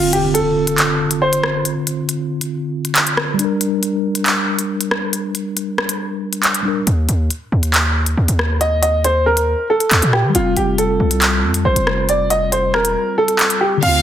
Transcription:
Already playing: D3 C4 F4, impact
0.13 G4, closed hi-hat
0.34 A4, closed hi-hat
0.67 closed hi-hat
0.78 clap, closed hi-hat
1.11 closed hi-hat
1.22 C5
1.33 closed hi-hat
1.44 cross-stick
1.65 closed hi-hat
1.87 closed hi-hat
2.09 closed hi-hat
2.41 closed hi-hat
2.85 closed hi-hat
2.96 clap, closed hi-hat
3.07 closed hi-hat
3.17 cross-stick
3.34 G3
3.39 D4, closed hi-hat
3.45 A#4
3.61 closed hi-hat
3.83 closed hi-hat
4.15 closed hi-hat
4.26 clap, closed hi-hat
4.59 closed hi-hat
4.81 closed hi-hat
4.91 cross-stick
5.13 closed hi-hat
5.35 closed hi-hat
5.57 closed hi-hat
5.78 cross-stick
5.89 closed hi-hat
6.33 closed hi-hat
6.43 clap, closed hi-hat
6.54 closed hi-hat
6.62 G3 D4
6.68 A#4
6.87 D#2, closed hi-hat
7.09 D#2, closed hi-hat
7.30 closed hi-hat
7.52 D#2
7.63 closed hi-hat
7.74 clap, closed hi-hat
8.06 closed hi-hat
8.17 D#2
8.28 D#2, closed hi-hat
8.39 cross-stick
8.61 D#5, closed hi-hat
8.82 D#5, closed hi-hat
9.04 C5, closed hi-hat
9.26 A#4
9.37 closed hi-hat
9.70 A4
9.80 closed hi-hat
9.91 D#2, clap, closed hi-hat
10.02 A#2, closed hi-hat
10.13 G4, cross-stick
10.24 D#3
10.29 G3
10.35 F1 C4 F4, closed hi-hat
10.40 F4
10.56 F1 G4, closed hi-hat
10.78 A4, closed hi-hat
11.00 C2
11.11 closed hi-hat
11.22 clap, closed hi-hat
11.43 F2
11.54 closed hi-hat
11.65 A1 C5
11.76 F1, closed hi-hat
11.87 cross-stick
12.09 D5, closed hi-hat
12.30 D#5, closed hi-hat
12.52 C5, closed hi-hat
12.74 D#1 A#4, cross-stick
12.85 closed hi-hat
12.90 F1
13.18 A4
13.28 closed hi-hat
13.39 clap, closed hi-hat
13.50 closed hi-hat
13.61 G4
13.77 D3
13.83 D2 D3 A3 C4 F4 F5, closed hi-hat, crash, downlifter
13.88 F4

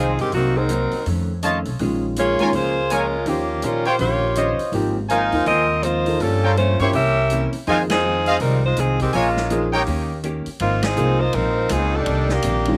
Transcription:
Already playing: C2 F2 D#3 F3 G#3 C4 D#4 F4 G#4 C5 D#5 G#5
0.18 G2 D#3 G#3 C4 G4, open hi-hat
0.32 C2 C3 D#3 F#3 A#3 C4 D#4 F#4, open hi-hat
0.55 F#3 A#3 C4 D#4 G#4 A#4 C5
0.69 C3 F#3 A#3 D#4, closed hi-hat
0.91 open hi-hat
1.06 F2 D#3 A3 C#4, open hi-hat
1.42 F2 D#3 A3 C#4 F4 C#5 D#5 A5, closed hi-hat
1.65 B1, open hi-hat
1.79 A#1 A#2 D#3 F3 G#3 C#4 F4, open hi-hat
2.16 A#2 F3 G#3 A#3 C#4 F4 G#4 C#5, closed hi-hat
2.39 D#3 G#3 C#4 F4 A#4 C#5 G#5, muted upright bass stroke, open hi-hat
2.53 C#2 A#2 F3 A#3 F4 G#4 C5, open hi-hat
2.57 G#3 C#4
2.90 A#2 F3 G#3 C#4 F4 A#4 C#5 G#5, closed hi-hat
3.26 D#2 D#3 F3 A#3 C#4 D#4 G4, open hi-hat
3.31 C5
3.62 A#2 D#3 G3 C#4 F4 G4 A#4 C5, closed hi-hat
3.85 A#3 F4 G4 C5 C#5 G5, open hi-hat
3.98 A#1 D#3 A#3 C#4 F4 G4 C5 C#5, open hi-hat
4.35 D#3 C#4 F4 G4 C5 C#5 D#5, closed hi-hat
4.59 muted upright bass stroke, open hi-hat
4.72 G#1 G#2 F3 A#3 D#4 G4, open hi-hat
4.77 C4
5.09 G#2 F3 A#3 D#4 F4 A#4 C5 F5 G#5, closed hi-hat
5.13 C4
5.32 D#2 F3 A#3 D#4 F4, open hi-hat
5.46 D#2 G#2 F3 A#3 C4 F4 A#4 D#5, open hi-hat
5.82 G#2 F3 A#3 C4 D#4 F4 C5, closed hi-hat
6.06 F3 A#3 D#4 A4, open hi-hat
6.20 G2 F3 G3 A#3 C#4 F4 A4, open hi-hat
6.43 F4 A#4 C#5 G5
6.57 G2 F3 A3 A#3 C#4 F4 C5, closed hi-hat
6.79 G2 A#3 C#4 E4 F4 G4 C5 C#5 C#6, open hi-hat
6.93 C2 C3 E3 A#3 C#4 G4 A#4 E5, open hi-hat
7.30 C3 E3 A#3, closed hi-hat
7.34 C#4
7.53 muted upright bass stroke, open hi-hat
7.67 F2 D#3 F3 G#3 A#3 C4 D#4 F4 G#4 C5 D#5 G#5, open hi-hat
7.71 C4
7.89 F3 C4 D#4 G#4, snare, ride
8.04 F2 D#3 G#3 C4
8.26 F4 C5 D#5 F5, open hi-hat
8.40 C2 F2 D#3 G3 G#3 C4 D#4 A#4, open hi-hat
8.44 C4
8.66 G#3 D#4 F4 C5
8.76 C2 F2 D#3 F3 G#3 C4 D#4 G#4, closed hi-hat
9.00 D#3 G#3 C4 G4, kick, open hi-hat
9.13 A#1 A#2 F3 G#3 A#3 C#4 F4 A#4 C#5 G#5, open hi-hat
9.37 snare
9.50 A#2 F3 G#3 A#3 C#4 D#4 G#4, closed hi-hat
9.73 D#3 A#3 C#4 D#4 G4 A#4 C#5 G5, open hi-hat
9.86 D#2 D#3 A#3 C#4, open hi-hat
9.91 G4
10.23 D#3 A#3 C#4 G4, closed hi-hat
10.46 muted upright bass stroke, open hi-hat
10.60 G#1 G#2 F3 A#3 C4 D#4 F4, ride
10.64 C4
10.83 F3 C4 D#4 G#4, snare, ride
10.96 C2 G#2 F3 A#3 C4 D#4 G#4, hi-hat pedal
11.21 A#3 D#4 F4 C5
11.33 A#1 G#2 F3 A#3 C4 D#4 A#4, ride
11.37 C4
11.69 C#2 G#2 F3 A#3 C4 D#4 G#4, hi-hat pedal, ride
11.96 G3 D4 D#4 A4
12.06 C2 C3 D#3, ride
12.10 A#3 D4
12.29 D#3 A#3, snare
12.33 D4 G4
12.42 A#1 C3 D#3 A#3 D4, hi-hat pedal, ride
12.65 D#3 G#3 C#4 F4, ride

